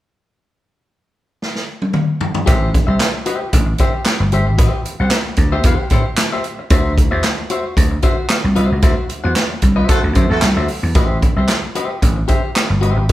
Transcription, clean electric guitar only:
2.46 G4 C5 E5
2.74 muted clean electric guitar stroke
2.87 G4 C5 E5
3.14 muted clean electric guitar stroke
3.26 G4 C5 E5
3.40 muted clean electric guitar stroke
3.66 muted clean electric guitar stroke
3.80 G4 C5 E5
3.94 muted clean electric guitar stroke
4.20 muted clean electric guitar stroke
4.33 G4 C5 E5
4.47 muted clean electric guitar stroke
4.58 G4 C5 E5
4.73 muted clean electric guitar stroke
4.85 muted clean electric guitar stroke
5.00 G4 C5 F#5
5.11 muted clean electric guitar stroke
5.25 muted clean electric guitar stroke
5.52 G4 C5 E5
5.65 G4 C5 F#5
5.79 muted clean electric guitar stroke
5.92 G4 C5 E5
6.06 muted clean electric guitar stroke
6.19 muted clean electric guitar stroke
6.32 G4 C5 E5
6.45 muted clean electric guitar stroke
6.59 muted clean electric guitar stroke
6.71 F#4 C5 E5
6.98 muted clean electric guitar stroke
7.11 F#4 C5 E5
7.38 muted clean electric guitar stroke
7.50 F#4 C5 E5
7.65 muted clean electric guitar stroke
7.91 muted clean electric guitar stroke
8.03 F#4 C5 E5
8.17 muted clean electric guitar stroke
8.44 muted clean electric guitar stroke
8.56 F#4 C5 E5
8.71 muted clean electric guitar stroke
8.83 F#4 C5 E5
8.96 muted clean electric guitar stroke
9.09 muted clean electric guitar stroke
9.24 F#4 C5 F#5
9.36 muted clean electric guitar stroke
9.49 muted clean electric guitar stroke
9.76 F#4 C5 E5
9.89 F#4 C5 F#5
10.03 muted clean electric guitar stroke
10.15 F#4 C5 E5
10.29 muted clean electric guitar stroke
10.43 muted clean electric guitar stroke
10.57 F#4 C5 E5
10.69 muted clean electric guitar stroke
10.83 muted clean electric guitar stroke
10.96 G4 C5 E5
11.23 muted clean electric guitar stroke
11.37 G4 C5 E5
11.63 muted clean electric guitar stroke
11.75 G4 C5 E5
11.90 muted clean electric guitar stroke
12.16 muted clean electric guitar stroke
12.28 G4 C5 E5
12.43 muted clean electric guitar stroke
12.69 muted clean electric guitar stroke
12.81 G4 C5 E5
12.97 muted clean electric guitar stroke

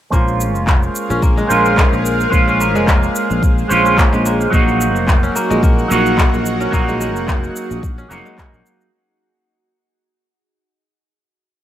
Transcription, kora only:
0.13 A#3
1.10 C#4
1.22 A#3
1.37 G#3
1.50 A#3
2.48 C#4
2.60 A#3
2.75 G#3
2.88 A#3
3.85 C#4
3.98 A#3
4.13 G#3
4.25 A#3
5.23 C#4
5.36 A#3
5.50 G#3
5.63 A#3
6.60 C#4
6.73 A#3
6.88 G#3
7.01 A#3
7.98 C#4
8.11 A#3
8.25 G#3
8.38 A#3

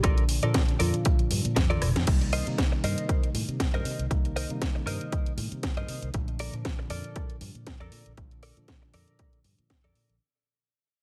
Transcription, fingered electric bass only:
0.04 A#1
0.43 A#2
0.80 F2
1.31 G2
1.45 A#2
1.56 F2
1.82 F1
1.96 F2
2.07 C2
2.47 C3
2.83 G2
3.34 A2
3.48 C3
3.73 G2
3.85 C3
3.99 C2
4.11 C2
4.49 C3
4.86 G2
5.37 A2
5.52 C3
5.77 G2
5.88 C3
6.02 C2
6.14 A#1
6.53 A#2
6.90 F2
7.41 G2
7.55 A#2
7.80 F2
7.92 A#2
8.06 A#1
8.18 A#1
8.57 A#2
8.94 F2
9.44 G2
9.59 A#2
9.84 F2
9.95 A#2
10.09 A#1

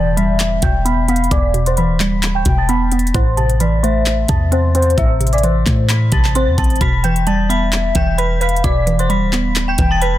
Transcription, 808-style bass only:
Already playing: E1
0.63 E1
1.31 E1
1.89 D1
2.46 E1
3.14 A1
4.29 E2
4.98 A1
5.66 A2
6.12 A1
6.47 E2
6.58 A1
6.81 E1
7.95 E1
8.64 E1
9.22 D1
9.79 E1

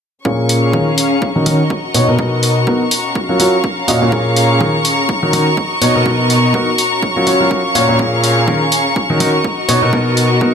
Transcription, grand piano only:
0.25 A#2 C#4 F4 G#4 A#4
0.73 D#3 C#4 F4 G#4 A#4
1.36 D#3 C#4 D#4 F#4 A#4
1.46 D#3 C#4 D#4 F#4 A#4
1.94 B2 B3 D#4 F#4 C#5
2.08 B2 B3 D#4 F#4 A#4
2.19 B3 D#4 F#4 A#4
2.67 B3 D#4 F#4 A#4
3.29 F#3 C#4 F4 F#4 A#4
3.40 F#3 C#4 F4 F#4 A#4
3.88 A#2 C#4 F4 F#4 D#5
4.02 A#2 C#4 F4 F#4 A#4
4.12 A#2 C#4 F4 G#4 A#4
4.61 D#3 C#4 F4 G#4 A#4
5.23 D#3 C#4 D#4 F#4 A#4
5.33 D#3 C#4 D#4 F#4 A#4
5.82 B2 B3 D#4 F#4 C#5
5.95 B2 B3 D#4 F#4 A#4
6.06 B2 B3 D#4 F#4 A#4
6.54 B3 D#4 F#4 A#4
7.16 F#3 C#4 F4 F#4 A#4
7.27 F#3 C#4 F4 F#4 C#5
7.40 F#3 C#4 F4 F#4 A#4
7.75 A#2 C#4 F4 F#4 C#5
7.89 A#2 C#4 F4 F#4 C#5
7.99 A#2 C#4 F4 G#4 A#4
8.48 D#3 C#4 F4 G#4 A#4
9.10 D#3 C#4 D#4 F#4 A#4
9.20 D#3 C#4 D#4 F#4 A#4
9.69 B2 B3 D#4 F#4 C#5
9.82 B2 B3 D#4 F#4 A#4
9.93 B2 B3 D#4 F#4 A#4
10.41 B3 D#4 F#4 A#4

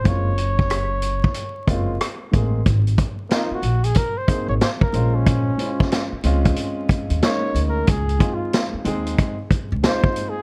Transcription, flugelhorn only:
0.08 C#5
3.32 D#4
3.54 F#4
3.84 G#4
3.98 A#4
4.18 C5
4.49 C#5
4.62 C5
4.82 A#4
5.15 C#4
7.24 C#5
7.68 A#4
7.90 G#4
8.34 F4
9.86 C5
10.30 G#4

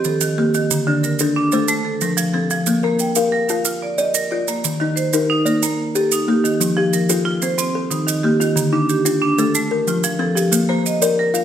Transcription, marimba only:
Already playing: G4
0.05 A4
0.22 D#3
0.38 G4
0.55 D#3
0.87 D3
1.03 A#4
1.36 D4
1.52 A4
1.68 A3
1.85 A4
2.02 A#4
2.17 F3
2.34 A4
2.51 F3
2.84 A#3
3.00 G5
3.32 A#4
3.48 F5
3.65 F4
3.82 D5
3.99 D#5
4.15 A#4
4.31 D5
4.48 A#3
4.80 D#3
4.96 C5
5.30 D#4
5.46 A#4
5.63 A#3
5.96 A4
6.13 D#4
6.28 G4
6.44 D#3
6.77 F3
6.93 A#4
7.25 F4
7.42 C5
7.58 C4
7.91 D#4
8.07 D#3
8.23 G4
8.40 D#3
8.73 D4
8.89 G4
9.22 D4
9.39 A4
9.55 A3
9.88 F4
10.04 F3
10.20 A4
10.35 F3
10.69 A#3
10.86 D#5
11.19 A#4
11.36 F5

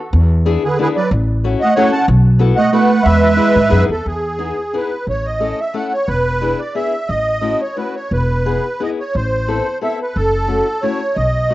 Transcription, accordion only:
0.64 G#4 B4
0.82 G#4 B4
0.96 B4 D5
1.60 D#5 F#5
1.75 C#5 F#5
1.92 F#5 A5
2.56 D#5 F#5
2.72 B4 F#5
3.03 B4 E5
3.91 A4
4.07 G#4
4.76 B4
5.09 C#5
5.25 D#5
5.60 E5
5.75 F#5
5.93 C#5
6.08 B4
6.60 D5
6.75 E5
7.08 D#5
7.61 C#5
7.77 B4
7.96 C#5
8.12 B4
8.83 D#5
9.00 C#5
9.16 C5
9.83 E5
10.02 B4
10.15 A4
10.82 C#5
11.15 D#5

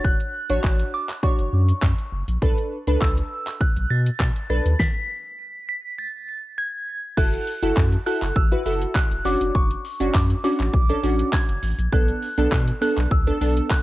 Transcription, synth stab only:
Already playing: D4 F#4 C#5
0.50 D4 F#4 C#5
1.23 D4 F#4 C#5
2.42 D4 A4 B4
2.87 D4 A4 B4
4.50 D4 A4 B4
7.17 E4 F#4 A4
7.62 E4 F#4 A4
8.06 E4 F#4 A4
8.52 E4 F#4 B4
8.66 E4 F#4 A4
9.25 C#4 D4 F#4
10.00 C#4 D4 F#4
10.44 C#4 D4 F#4
10.89 C#4 D4 A4
11.03 C#4 D4 F#4
11.92 B3 D4 A4
12.38 B3 D4 A4
12.81 B3 D4 A4
13.27 B3 D4 A4
13.41 B3 D4 A4

